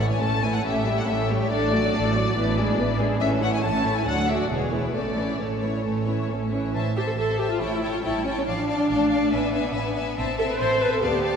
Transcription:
Already playing: A1 A2
0.00 E3 A3 E4 C#5
0.10 G#5
0.20 A1 A2 A3 C#4 A4 A5
0.42 E3 A3 E4 C#5 G#5
0.53 F#5
0.63 A1 A2 A3 C#4 G4 A4 E5
0.86 G3 A3 E4 G4
0.97 F#5
1.06 A1 A2 A3 C#4 G4 A4 E5
1.29 G3 A3 E4 G4 C#5
1.40 C#5
1.50 A1 A2 A3 D4 A4 D5
1.73 F#3 A3 F#4 D5
1.94 A1 A2 A3 D4 A4
2.15 F#3 A3 F#4 D5
2.36 A1 A2 E3 B3 D4 B4
2.57 G#3 D4 E4 G#4
2.78 A1 A2 E3 B3 D4 B4
2.99 G#3 D4 E4 G#4
3.20 A1 A2 E3 C#4 A4 E5
3.42 A3 E4 C#5 F#5
3.53 G#5
3.63 A1 A2 E3 C#4 A4 A5
3.85 A3 E4 C#5
3.96 G#5
4.06 D2 F#3 D4 A4 F#5
4.29 A3 F#4 D5 E5
4.41 D5
4.50 E1 E2 G#3 B3 G#4 C#5
4.72 E3 G#3 E4 B4
4.85 B4
4.95 A1 A2 A3 C#4 A4 D5
5.17 E3 C#4 E4 C#5
5.40 A1 A2 A3 C#4 A4 C#5
5.62 E3 C#4 E4 C#5
5.84 A1 A2 A3 C#4 A4
6.06 E3 C#4 E4 C#5
6.30 A1 A2 A3 C#4 A4
6.52 E3 C#4 E4 C#5
6.74 A1 C5 E5 A5
6.96 G4 C5 E5 A5
7.07 A4
7.18 A1 A4 C5 E5 A5
7.39 G4 C5 E5 A5
7.50 F4
7.60 A1 A3 E4 C#5 G5 A5
7.82 C#5 G5 A5
7.94 F4
8.04 A1 G3 E4 C#5 G5 A5
8.25 C#4 C#5 G5 A5
8.37 C#4
8.47 A1 F3 D4 D5 F5 A5
8.68 D5 F5 A5
8.89 A1 A3 D5 F5 A5
9.09 D5 F5 A5
9.31 A1 B3 B4 E5 G#5
9.53 B4 E5 G#5
9.73 A1 B4 E5 G#5
9.95 B4 E5 G#5
10.17 A1 C4 C5 E5 A5
10.38 A4 C5 E5 A5
10.48 B4
10.59 A1 C5 E5 A5
10.79 B4 C5 E5 A5
10.92 A4
11.01 D2 B3 G4 D5 F5 A5
11.23 D5 F5 A5

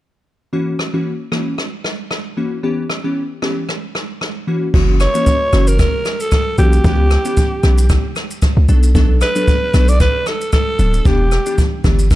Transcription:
0.53 E3 A#3 C#4 F#4
0.79 cross-stick
0.93 E3 A#3 C#4 F#4
1.32 E3 A#3 C#4 F#4, cross-stick
1.58 cross-stick
1.84 cross-stick
2.11 cross-stick
2.37 E3 A#3 C#4 F#4
2.63 E3 B3 C#4 G4
2.90 cross-stick
3.04 E3 B3 C#4 G4
3.42 E3 B3 C#4 G4, cross-stick
3.69 cross-stick
3.95 cross-stick
4.21 cross-stick
4.47 E3 A#3 C#4 F#4
4.74 F#1 E3 A#3 C#4 F#4, kick, crash
5.00 C#5, cross-stick, shaker
5.15 E3 A#3 C#4 F#4, shaker
5.27 kick, shaker
5.53 F#1 E3 A#3 C#4 F#4, cross-stick, shaker
5.67 A#4, shaker
5.79 A#4, kick, cross-stick, shaker
6.05 cross-stick, shaker
6.20 A4, shaker
6.31 kick, cross-stick, shaker
6.58 B1 E3 A#3 C#4 F#4 G4, shaker
6.73 shaker
6.84 C#2 E3 B3 C#4 G4, kick, shaker
7.11 cross-stick, shaker
7.25 E3 B3 C#4 G4, shaker
7.37 kick, shaker
7.63 B1 E3 B3 C#4 G4, cross-stick, shaker
7.78 shaker
7.90 kick, cross-stick, shaker
8.16 cross-stick, shaker
8.31 shaker
8.42 kick, cross-stick, shaker
8.57 C#2
8.68 B1 F#3 B3 D4 A4, shaker
8.83 shaker
8.95 F#3 B3 D4 A4, kick, shaker
9.21 B4, cross-stick, shaker
9.35 F#3 B3 D4 A4, shaker
9.48 kick, shaker
9.73 B1 F#3 B3 D4 A4, cross-stick, shaker
9.88 D5, shaker
10.00 B4, kick, cross-stick, shaker
10.26 A4, cross-stick, shaker
10.41 shaker
10.52 A4, kick, cross-stick, shaker
10.79 D1 F#3 B3 D4 A4, shaker
10.94 shaker
11.05 E1 E3 B3 D4 G4, kick, shaker
11.32 cross-stick, shaker
11.46 E3 B3 D4 G4, shaker
11.58 kick, shaker
11.84 G1 E3 B3 D4 G4, kick, cross-stick, shaker
11.99 shaker
12.11 kick, cross-stick, shaker

